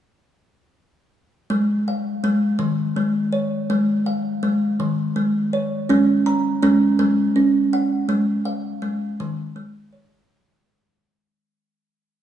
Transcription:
0, 0, Header, 1, 2, 480
1, 0, Start_track
1, 0, Tempo, 732601
1, 983, Time_signature, 6, 3, 24, 8
1, 8011, End_track
2, 0, Start_track
2, 0, Title_t, "Kalimba"
2, 0, Program_c, 0, 108
2, 983, Note_on_c, 0, 56, 73
2, 1231, Note_on_c, 0, 77, 50
2, 1374, Note_off_c, 0, 56, 0
2, 1466, Note_on_c, 0, 56, 67
2, 1696, Note_on_c, 0, 51, 67
2, 1705, Note_off_c, 0, 56, 0
2, 1942, Note_on_c, 0, 56, 61
2, 1947, Note_off_c, 0, 77, 0
2, 2179, Note_on_c, 0, 73, 48
2, 2416, Note_off_c, 0, 56, 0
2, 2419, Note_off_c, 0, 51, 0
2, 2423, Note_on_c, 0, 56, 71
2, 2662, Note_on_c, 0, 77, 53
2, 2814, Note_off_c, 0, 56, 0
2, 2900, Note_off_c, 0, 73, 0
2, 2901, Note_on_c, 0, 56, 63
2, 3142, Note_off_c, 0, 56, 0
2, 3144, Note_on_c, 0, 51, 64
2, 3381, Note_on_c, 0, 56, 56
2, 3382, Note_off_c, 0, 77, 0
2, 3624, Note_on_c, 0, 73, 52
2, 3858, Note_off_c, 0, 56, 0
2, 3861, Note_on_c, 0, 61, 67
2, 3863, Note_off_c, 0, 51, 0
2, 3866, Note_on_c, 0, 56, 72
2, 4103, Note_off_c, 0, 73, 0
2, 4103, Note_on_c, 0, 82, 57
2, 4255, Note_off_c, 0, 56, 0
2, 4333, Note_off_c, 0, 61, 0
2, 4341, Note_on_c, 0, 61, 65
2, 4344, Note_on_c, 0, 56, 70
2, 4538, Note_off_c, 0, 56, 0
2, 4581, Note_on_c, 0, 56, 73
2, 4813, Note_off_c, 0, 61, 0
2, 4821, Note_on_c, 0, 61, 59
2, 4822, Note_off_c, 0, 82, 0
2, 5066, Note_on_c, 0, 78, 56
2, 5167, Note_off_c, 0, 56, 0
2, 5299, Note_on_c, 0, 56, 66
2, 5302, Note_off_c, 0, 61, 0
2, 5539, Note_on_c, 0, 77, 58
2, 5544, Note_off_c, 0, 78, 0
2, 5771, Note_off_c, 0, 56, 0
2, 5779, Note_on_c, 0, 56, 64
2, 6028, Note_on_c, 0, 51, 73
2, 6256, Note_off_c, 0, 56, 0
2, 6261, Note_off_c, 0, 77, 0
2, 6264, Note_on_c, 0, 56, 63
2, 6504, Note_on_c, 0, 73, 49
2, 6613, Note_off_c, 0, 51, 0
2, 6744, Note_off_c, 0, 56, 0
2, 6984, Note_off_c, 0, 73, 0
2, 8011, End_track
0, 0, End_of_file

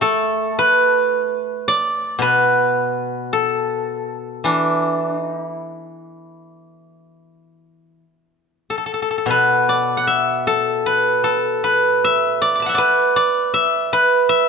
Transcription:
0, 0, Header, 1, 2, 480
1, 0, Start_track
1, 0, Tempo, 1092896
1, 14, Time_signature, 4, 2, 24, 8
1, 974, Tempo, 1125704
1, 2414, Tempo, 1171875
1, 2894, Tempo, 1252610
1, 3854, Tempo, 1188119
1, 4334, Tempo, 1176471
1, 4814, Tempo, 1138520
1, 6016, End_track
2, 0, Start_track
2, 0, Title_t, "Guzheng"
2, 0, Program_c, 0, 107
2, 0, Note_on_c, 0, 64, 37
2, 5, Note_on_c, 0, 57, 54
2, 8, Note_on_c, 0, 69, 82
2, 258, Note_off_c, 0, 64, 0
2, 258, Note_on_c, 0, 71, 79
2, 738, Note_on_c, 0, 74, 84
2, 960, Note_on_c, 0, 47, 53
2, 972, Note_off_c, 0, 71, 0
2, 974, Note_off_c, 0, 69, 0
2, 974, Note_on_c, 0, 71, 86
2, 1444, Note_off_c, 0, 57, 0
2, 1448, Note_on_c, 0, 69, 71
2, 1533, Note_off_c, 0, 74, 0
2, 1847, Note_off_c, 0, 71, 0
2, 1921, Note_off_c, 0, 47, 0
2, 1922, Note_on_c, 0, 52, 47
2, 1928, Note_on_c, 0, 62, 64
2, 2201, Note_off_c, 0, 62, 0
2, 2201, Note_on_c, 0, 63, 64
2, 2371, Note_off_c, 0, 63, 0
2, 2371, Note_on_c, 0, 64, 64
2, 2385, Note_off_c, 0, 69, 0
2, 3359, Note_off_c, 0, 64, 0
2, 3372, Note_off_c, 0, 52, 0
2, 3635, Note_on_c, 0, 69, 43
2, 3663, Note_off_c, 0, 69, 0
2, 3664, Note_on_c, 0, 69, 32
2, 3694, Note_off_c, 0, 69, 0
2, 3696, Note_on_c, 0, 69, 36
2, 3724, Note_off_c, 0, 69, 0
2, 3726, Note_on_c, 0, 69, 31
2, 3757, Note_off_c, 0, 69, 0
2, 3758, Note_on_c, 0, 69, 37
2, 3789, Note_off_c, 0, 69, 0
2, 3791, Note_on_c, 0, 69, 30
2, 3817, Note_off_c, 0, 69, 0
2, 3818, Note_on_c, 0, 69, 34
2, 3849, Note_on_c, 0, 47, 53
2, 3867, Note_on_c, 0, 71, 74
2, 4023, Note_on_c, 0, 74, 72
2, 4136, Note_on_c, 0, 78, 55
2, 4178, Note_on_c, 0, 76, 72
2, 4337, Note_off_c, 0, 69, 0
2, 4338, Note_on_c, 0, 69, 72
2, 4496, Note_off_c, 0, 71, 0
2, 4498, Note_on_c, 0, 71, 69
2, 4650, Note_off_c, 0, 69, 0
2, 4651, Note_on_c, 0, 69, 68
2, 4774, Note_off_c, 0, 74, 0
2, 4789, Note_off_c, 0, 78, 0
2, 4813, Note_off_c, 0, 71, 0
2, 4815, Note_on_c, 0, 71, 75
2, 4881, Note_off_c, 0, 76, 0
2, 4986, Note_on_c, 0, 76, 80
2, 5143, Note_on_c, 0, 74, 78
2, 5201, Note_on_c, 0, 86, 33
2, 5219, Note_on_c, 0, 83, 39
2, 5230, Note_on_c, 0, 81, 42
2, 5246, Note_on_c, 0, 78, 48
2, 5257, Note_off_c, 0, 76, 0
2, 5258, Note_on_c, 0, 76, 47
2, 5280, Note_off_c, 0, 74, 0
2, 5282, Note_on_c, 0, 74, 50
2, 5294, Note_off_c, 0, 47, 0
2, 5295, Note_off_c, 0, 71, 0
2, 5297, Note_on_c, 0, 71, 76
2, 5455, Note_off_c, 0, 74, 0
2, 5457, Note_on_c, 0, 74, 82
2, 5573, Note_off_c, 0, 69, 0
2, 5614, Note_off_c, 0, 76, 0
2, 5616, Note_on_c, 0, 76, 82
2, 5715, Note_off_c, 0, 86, 0
2, 5779, Note_off_c, 0, 71, 0
2, 5780, Note_on_c, 0, 71, 87
2, 5789, Note_off_c, 0, 83, 0
2, 5841, Note_off_c, 0, 81, 0
2, 5923, Note_off_c, 0, 78, 0
2, 5932, Note_off_c, 0, 76, 0
2, 5933, Note_on_c, 0, 76, 88
2, 6016, Note_off_c, 0, 71, 0
2, 6016, Note_off_c, 0, 74, 0
2, 6016, Note_off_c, 0, 76, 0
2, 6016, End_track
0, 0, End_of_file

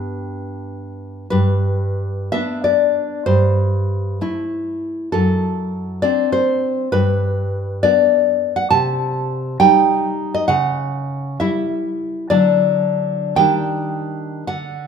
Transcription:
0, 0, Header, 1, 2, 480
1, 0, Start_track
1, 0, Tempo, 696864
1, 906, Time_signature, 6, 3, 24, 8
1, 1369, Tempo, 634249
1, 3289, Tempo, 598205
1, 9529, Tempo, 696056
1, 10009, Tempo, 738916
1, 11227, End_track
2, 0, Start_track
2, 0, Title_t, "Nylon-string guitar"
2, 0, Program_c, 0, 24
2, 0, Note_on_c, 0, 43, 61
2, 0, Note_on_c, 0, 59, 46
2, 0, Note_on_c, 0, 62, 46
2, 0, Note_on_c, 0, 79, 84
2, 630, Note_off_c, 0, 79, 0
2, 862, Note_off_c, 0, 43, 0
2, 868, Note_off_c, 0, 59, 0
2, 875, Note_off_c, 0, 62, 0
2, 898, Note_on_c, 0, 71, 85
2, 909, Note_on_c, 0, 43, 67
2, 1581, Note_off_c, 0, 71, 0
2, 1595, Note_off_c, 0, 43, 0
2, 1621, Note_on_c, 0, 76, 97
2, 1627, Note_on_c, 0, 59, 52
2, 1633, Note_on_c, 0, 62, 57
2, 1850, Note_off_c, 0, 76, 0
2, 1863, Note_on_c, 0, 74, 76
2, 2309, Note_off_c, 0, 59, 0
2, 2312, Note_off_c, 0, 62, 0
2, 2317, Note_off_c, 0, 74, 0
2, 2332, Note_on_c, 0, 72, 88
2, 2337, Note_on_c, 0, 43, 63
2, 3034, Note_off_c, 0, 43, 0
2, 3052, Note_on_c, 0, 57, 53
2, 3057, Note_on_c, 0, 64, 59
2, 3746, Note_off_c, 0, 57, 0
2, 3746, Note_off_c, 0, 72, 0
2, 3747, Note_off_c, 0, 64, 0
2, 3769, Note_on_c, 0, 69, 84
2, 3782, Note_on_c, 0, 42, 70
2, 4460, Note_off_c, 0, 69, 0
2, 4474, Note_off_c, 0, 42, 0
2, 4491, Note_on_c, 0, 74, 89
2, 4497, Note_on_c, 0, 60, 53
2, 4503, Note_on_c, 0, 62, 60
2, 4721, Note_off_c, 0, 74, 0
2, 4733, Note_on_c, 0, 72, 91
2, 5183, Note_off_c, 0, 60, 0
2, 5186, Note_off_c, 0, 62, 0
2, 5195, Note_off_c, 0, 72, 0
2, 5212, Note_on_c, 0, 71, 95
2, 5218, Note_on_c, 0, 43, 67
2, 5915, Note_off_c, 0, 71, 0
2, 5925, Note_off_c, 0, 43, 0
2, 5941, Note_on_c, 0, 74, 93
2, 5949, Note_on_c, 0, 59, 55
2, 5953, Note_on_c, 0, 62, 60
2, 6499, Note_off_c, 0, 74, 0
2, 6528, Note_on_c, 0, 78, 81
2, 6612, Note_off_c, 0, 59, 0
2, 6613, Note_off_c, 0, 62, 0
2, 6640, Note_off_c, 0, 78, 0
2, 6643, Note_on_c, 0, 81, 99
2, 6650, Note_on_c, 0, 48, 73
2, 7325, Note_off_c, 0, 81, 0
2, 7336, Note_off_c, 0, 48, 0
2, 7360, Note_on_c, 0, 79, 103
2, 7363, Note_on_c, 0, 55, 58
2, 7368, Note_on_c, 0, 63, 65
2, 7938, Note_off_c, 0, 79, 0
2, 7959, Note_on_c, 0, 75, 85
2, 8053, Note_off_c, 0, 55, 0
2, 8056, Note_off_c, 0, 63, 0
2, 8063, Note_off_c, 0, 75, 0
2, 8066, Note_on_c, 0, 78, 97
2, 8073, Note_on_c, 0, 49, 76
2, 8773, Note_off_c, 0, 78, 0
2, 8784, Note_off_c, 0, 49, 0
2, 8804, Note_on_c, 0, 76, 84
2, 8810, Note_on_c, 0, 55, 53
2, 8814, Note_on_c, 0, 64, 61
2, 9034, Note_off_c, 0, 76, 0
2, 9499, Note_off_c, 0, 55, 0
2, 9499, Note_off_c, 0, 64, 0
2, 9528, Note_on_c, 0, 74, 95
2, 9531, Note_on_c, 0, 54, 47
2, 9534, Note_on_c, 0, 50, 66
2, 9537, Note_on_c, 0, 62, 52
2, 10224, Note_off_c, 0, 74, 0
2, 10226, Note_off_c, 0, 54, 0
2, 10228, Note_off_c, 0, 62, 0
2, 10232, Note_off_c, 0, 50, 0
2, 10247, Note_on_c, 0, 79, 92
2, 10250, Note_on_c, 0, 51, 66
2, 10253, Note_on_c, 0, 55, 48
2, 10255, Note_on_c, 0, 62, 47
2, 10937, Note_off_c, 0, 79, 0
2, 10940, Note_off_c, 0, 55, 0
2, 10942, Note_off_c, 0, 62, 0
2, 10943, Note_off_c, 0, 51, 0
2, 10968, Note_on_c, 0, 78, 75
2, 10973, Note_on_c, 0, 50, 57
2, 11227, Note_off_c, 0, 50, 0
2, 11227, Note_off_c, 0, 78, 0
2, 11227, End_track
0, 0, End_of_file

